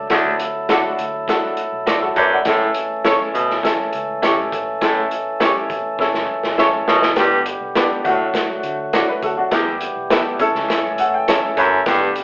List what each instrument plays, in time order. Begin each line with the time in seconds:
Already playing: tonewheel organ F#3 A3 A4
0.10 baritone saxophone D2, fingered electric bass D2, upright piano D4 F#4 A4, tonewheel organ E4, kick, snare, closed hi-hat
0.39 closed hi-hat
0.69 upright piano D4 F#4 A4, clean electric guitar F#4 A4 D5, snare, closed hi-hat
0.98 fingered electric bass D2, closed hi-hat
1.28 fingered electric bass A1, upright piano D4 F#4 A4, kick, snare, closed hi-hat
1.57 closed hi-hat
1.72 fingered electric bass B1
1.87 fingered electric bass G1, clean electric guitar F#4 A4 D5, snare, closed hi-hat
2.01 upright piano F#4 A4
2.16 fingered electric bass G#1, baritone saxophone F#2, clean electric guitar F#4 A4 D5, upright piano B4 D5, kick, closed hi-hat
2.33 upright piano D5 F#5
2.45 fingered electric bass A1, baritone saxophone A2, tonewheel organ E3 C#4 A4, upright piano C#4 E4 A4, kick, snare, closed hi-hat
2.74 closed hi-hat
3.04 upright piano C#4 E4 A4, clean electric guitar E4 A4 C#5, snare, closed hi-hat
3.34 fingered electric bass G1, baritone saxophone B2, closed hi-hat
3.50 snare
3.63 fingered electric bass A1, upright piano C#4 E4 A4, kick, snare, closed hi-hat
3.93 fingered electric bass C#2, closed hi-hat
4.22 fingered electric bass G1, upright piano C#4 E4 G4, clean electric guitar E4 A4 C#5, snare, closed hi-hat
4.52 fingered electric bass G#1, kick, closed hi-hat
4.81 fingered electric bass A1, baritone saxophone A2, upright piano C#4 E4 A4, kick, snare, closed hi-hat
5.11 closed hi-hat
5.40 upright piano C#4 E4 G4, clean electric guitar E4 A4 C#5, snare, closed hi-hat
5.70 fingered electric bass A1, kick, closed hi-hat
5.99 fingered electric bass E1, upright piano C#4 E4 A4, kick, snare
6.14 fingered electric bass F#1, snare
6.43 fingered electric bass G1, snare
6.58 upright piano C#4 E4 A4, clean electric guitar E4 A4 C#5, snare
6.73 fingered electric bass A1
6.87 fingered electric bass F1, baritone saxophone B2, clean electric guitar E4 A4 C#5, snare
7.02 fingered electric bass F#1, snare
7.16 fingered electric bass G1, baritone saxophone G2, tonewheel organ D3 G3 B3 G4, upright piano B3 D4 G4, kick, snare, closed hi-hat
7.46 closed hi-hat
7.61 fingered electric bass B1
7.75 upright piano B3 D4 G4, clean electric guitar G4 B4 D5, snare, closed hi-hat
8.04 fingered electric bass D2, baritone saxophone A2, tonewheel organ F#3 A3 F#4, upright piano A3 D4 F#4, kick, closed hi-hat
8.20 fingered electric bass B1
8.34 fingered electric bass A1, kick, snare, closed hi-hat
8.63 fingered electric bass D3, closed hi-hat
8.93 upright piano D4 F#4, clean electric guitar F#4 A4 D5, snare, closed hi-hat
9.08 upright piano B4
9.23 fingered electric bass D2, upright piano F#4 A4, kick, closed hi-hat
9.37 fingered electric bass D#2, upright piano D4 F#4
9.51 fingered electric bass E2, baritone saxophone E2, tonewheel organ E3 G3 B3 G4, upright piano B3 E4 G4, kick, snare, closed hi-hat
9.81 closed hi-hat
9.96 fingered electric bass B1
10.10 upright piano B3 E4 A4, clean electric guitar G4 B4 E5, snare, closed hi-hat
10.39 fingered electric bass A1, tonewheel organ A3 C#4 A4, upright piano C#4 E4 A4, kick, closed hi-hat
10.54 fingered electric bass C#2, snare
10.69 fingered electric bass E2, kick, snare, closed hi-hat
10.98 fingered electric bass A2, upright piano F#5, closed hi-hat
11.14 upright piano G5
11.28 upright piano C#4 E4 A4 A5, clean electric guitar A4 C#5 E5, snare, closed hi-hat
11.57 fingered electric bass F#1, baritone saxophone F#2, clean electric guitar A4 C#5 E5, upright piano B5, kick, closed hi-hat
11.86 fingered electric bass G1, baritone saxophone G2, tonewheel organ D3 G3 B3 G4, upright piano B3 D4 G4, kick, snare, closed hi-hat
12.16 closed hi-hat